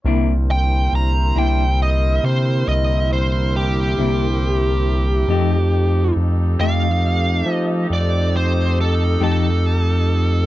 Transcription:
0.04 0.88 C2 loud
0.04 0.31 C3 medium
0.04 5.26 D3 medium
0.04 0.32 A#3 medium
0.04 5.26 A#3 medium
0.04 0.32 D4 loud
0.04 5.25 E4 medium
0.04 5.26 E4 medium
0.04 0.32 E4 medium
0.04 5.26 G4 medium
0.04 5.25 A#4 medium
0.04 2.64 C5 medium
0.51 0.92 G5 loud
0.92 1.32 C2 medium
0.92 1.36 A#5 medium
1.36 2.19 C2 medium
1.36 1.63 C3 medium
1.36 1.63 A#3 medium
1.36 1.62 D4 medium
1.36 1.62 E4 medium
1.36 1.80 G5 medium
1.82 2.23 D#5 medium
2.23 2.63 C3 medium
2.23 2.67 C5 medium
2.66 3.94 C2 loud
2.66 5.26 C5 medium
2.66 3.10 D#5 medium
3.13 3.54 C5 medium
3.56 6.13 G4 medium
3.98 5.25 C2 medium
3.98 4.25 C3 soft
3.98 4.25 A#3 soft
3.98 4.24 D4 medium
3.98 4.24 E4 medium
5.28 6.12 F2 loud
5.28 5.55 F3 medium
5.28 10.46 A3 medium
5.28 5.55 A3 medium
5.28 10.46 C4 medium
5.28 10.46 D#4 medium
5.28 5.56 D#4 medium
5.28 10.46 D#4 medium
5.28 10.46 G4 medium
5.28 5.56 G4 medium
5.28 10.46 A4 medium
6.16 6.56 F2 loud
6.59 7.43 F2 medium
6.59 6.87 F3 medium
6.59 6.86 A3 medium
6.59 6.86 D#4 medium
6.59 6.86 G4 medium
6.59 7.51 F5 medium
7.46 7.86 F3 medium
7.51 7.87 D#5 medium
7.90 9.17 F2 loud
7.90 8.34 D5 medium
8.37 8.78 C5 medium
8.81 9.21 A4 medium
9.20 10.46 F2 medium
9.20 9.48 F3 medium
9.20 9.47 A3 medium
9.20 9.47 D#4 medium
9.20 9.47 G4 medium
9.20 10.46 A4 medium

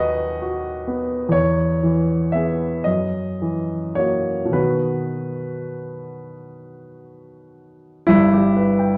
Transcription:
0.00 1.31 D#2 soft
0.00 1.37 F#3 soft
0.00 0.25 F#4 soft
0.00 0.70 B4 soft
0.00 1.34 D#5 medium
0.00 1.37 F#5 medium
0.00 1.38 G#5 medium
0.42 1.16 F#4 soft
0.87 1.35 B3 soft
1.29 2.80 E2 medium
1.29 2.32 C#5 medium
1.83 2.65 E3 soft
2.32 2.83 B3 soft
2.32 2.83 G#4 soft
2.32 2.86 E5 medium
2.84 4.52 F#2 soft
2.84 3.97 D#5 medium
3.42 4.33 E3 soft
3.95 4.52 A#3 soft
3.95 4.52 F#4 soft
3.95 4.55 C#5 medium
4.45 8.00 B2 soft
4.51 8.03 D#3 soft
4.51 8.04 B3 soft
4.51 8.04 F#4 soft
4.51 6.32 B4 medium
8.07 8.97 G1 medium
8.07 8.97 G2 medium
8.07 8.97 E4 medium
8.33 8.71 G4 soft
8.57 8.93 B4 soft
8.79 8.97 G5 soft

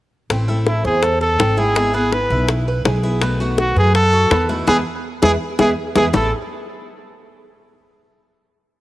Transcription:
0.30 0.81 A1 medium
0.30 0.48 E3 medium
0.30 0.48 A3 medium
0.30 0.48 C4 medium
0.30 0.47 E4 medium
0.30 high bongo medium
0.48 1.02 A3 medium
0.48 1.02 C4 medium
0.48 1.03 E4 medium
0.48 0.83 A4 medium
0.67 0.84 E4 medium
0.67 high bongo medium
0.84 1.35 E2 medium
0.84 1.05 G#4 medium
0.84 1.20 C5 medium
0.84 high bongo soft
1.03 1.21 A4 medium
1.03 muted steel-string acoustic guitar stroke medium
1.03 high bongo medium
1.21 1.39 A4 medium
1.21 1.60 A4 medium
1.21 high bongo soft
1.39 2.24 G#1 medium
1.39 1.57 E3 soft
1.39 1.57 A3 soft
1.39 1.57 C4 medium
1.39 1.57 C4 soft
1.39 1.56 E4 medium
1.39 high bongo medium
1.39 low bongo medium
1.57 1.75 A3 medium
1.57 1.75 C4 medium
1.57 1.75 E4 medium
1.57 1.93 E4 medium
1.57 1.95 G#4 loud
1.57 high bongo soft
1.75 1.93 G#3 medium
1.75 1.93 B3 medium
1.75 1.92 E4 medium
1.75 high bongo medium
1.93 2.29 B3 medium
1.93 2.48 B3 medium
1.93 2.47 E4 medium
1.93 2.14 G#4 medium
1.93 high bongo soft
2.12 2.49 B4 medium
2.12 high bongo medium
2.30 2.81 B1 medium
2.30 2.66 E4 medium
2.30 high bongo soft
2.48 muted steel-string acoustic guitar stroke medium
2.48 high bongo medium
2.68 2.85 B4 medium
2.85 3.70 B1 medium
2.85 3.02 G#3 soft
2.85 3.03 B3 soft
2.85 3.02 E4 medium
2.85 3.20 G#4 medium
2.85 high bongo medium
2.85 low bongo medium
3.03 3.21 B3 medium
3.03 3.21 E4 medium
3.03 high bongo soft
3.21 3.39 B2 medium
3.21 3.39 D#3 medium
3.21 3.39 A3 medium
3.21 3.40 B3 medium
3.21 3.39 B3 medium
3.21 3.39 F#4 medium
3.21 high bongo medium
3.40 3.94 D#3 medium
3.40 3.94 A3 medium
3.40 3.95 B3 medium
3.40 3.94 F#4 medium
3.40 3.75 F#4 medium
3.58 3.76 F#4 medium
3.58 high bongo medium
3.76 4.27 F#2 medium
3.76 3.94 G#4 loud
3.76 4.12 B4 medium
3.76 high bongo soft
3.94 4.46 A4 loud
3.94 muted steel-string acoustic guitar stroke medium
3.94 high bongo medium
4.13 4.31 F#4 medium
4.13 high bongo soft
4.31 4.65 E2 medium
4.31 4.48 D#3 soft
4.31 4.49 A3 soft
4.31 4.49 B3 medium
4.31 4.48 B3 medium
4.31 4.48 F#4 soft
4.31 high bongo medium
4.31 low bongo medium
4.49 4.67 D#3 medium
4.49 4.66 A3 medium
4.49 4.66 B3 medium
4.49 4.66 E4 medium
4.49 4.67 F#4 medium
4.49 high bongo soft
4.67 4.81 E2 medium
4.67 4.79 G#3 medium
4.67 4.79 B3 loud
4.67 4.79 E4 medium
4.67 4.79 G#4 medium
4.67 4.77 G#4 loud
4.67 low bongo medium
5.22 5.36 E2 medium
5.22 5.34 G#3 medium
5.22 5.34 B3 medium
5.22 5.34 E4 medium
5.22 5.34 G#4 medium
5.22 5.32 G#4 medium
5.22 low bongo medium
5.59 5.73 E2 medium
5.59 5.71 G#3 medium
5.59 5.71 B3 medium
5.59 5.71 E4 medium
5.59 5.71 G#4 medium
5.59 5.69 G#4 medium
5.59 low bongo medium
5.95 6.09 E2 medium
5.95 6.08 G#3 medium
5.95 6.08 B3 medium
5.95 6.08 E4 loud
5.95 6.08 E4 medium
5.95 6.08 G#4 medium
5.95 6.05 G#4 medium
5.95 low bongo medium
6.13 6.31 A1 medium
6.13 6.28 A2 medium
6.13 6.29 E3 medium
6.13 6.31 A3 medium
6.13 6.29 A3 medium
6.13 6.29 C4 medium
6.13 6.31 E4 medium
6.13 6.29 E4 medium
6.13 6.31 A4 medium
6.13 6.32 A4 medium
6.13 low bongo medium

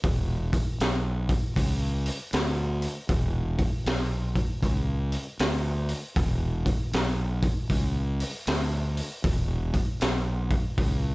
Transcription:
0.04 0.56 E1 medium
0.04 kick loud
0.04 open hi-hat medium
0.53 kick medium
0.53 open hi-hat medium
0.80 1.32 B1 medium
0.80 snare loud
0.80 open hi-hat medium
1.29 kick medium
1.29 open hi-hat medium
1.56 2.09 C#2 medium
1.56 kick medium
1.56 open hi-hat medium
2.06 open hi-hat medium
2.33 2.85 D2 medium
2.33 snare loud
2.33 open hi-hat medium
2.82 open hi-hat medium
3.09 3.62 E1 medium
3.09 kick loud
3.09 open hi-hat medium
3.59 kick medium
3.59 open hi-hat medium
3.86 4.39 B1 medium
3.86 snare loud
3.86 open hi-hat medium
4.35 kick medium
4.35 open hi-hat medium
4.63 5.15 C#2 medium
4.63 kick medium
4.63 open hi-hat medium
5.12 open hi-hat medium
5.39 5.92 D2 medium
5.39 snare loud
5.39 open hi-hat medium
5.89 open hi-hat medium
6.16 6.69 E1 medium
6.16 kick loud
6.16 open hi-hat medium
6.66 kick medium
6.66 open hi-hat medium
6.93 7.46 B1 medium
6.93 snare loud
6.93 open hi-hat medium
7.43 kick medium
7.43 open hi-hat medium
7.69 8.22 C#2 medium
7.69 kick medium
7.69 open hi-hat medium
8.20 open hi-hat medium
8.47 9.00 D2 medium
8.47 snare loud
8.47 open hi-hat medium
8.97 open hi-hat medium
9.24 9.77 E1 medium
9.24 kick loud
9.24 open hi-hat medium
9.74 kick medium
9.74 open hi-hat medium
10.01 10.54 B1 medium
10.01 snare loud
10.01 open hi-hat medium
10.50 kick medium
10.50 open hi-hat medium
10.78 11.15 C#2 loud
10.78 kick medium
10.78 open hi-hat medium

